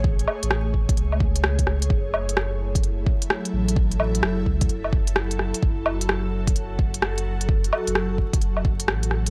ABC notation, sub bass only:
X:1
M:4/4
L:1/16
Q:"Swing 16ths" 1/4=129
K:F#m
V:1 name="Sub bass" clef=bass
A,,,2 z A,,,4- A,,, C,,8 | F,,,8- F,,,2 z4 A,,,2- | A,,,4 F,,,2 C,,2 F,,,6- F,,, z | F,,,8 F,,,2 F,,,6- |
F,,,2 z F,,,8- F,,, A,,,4 |]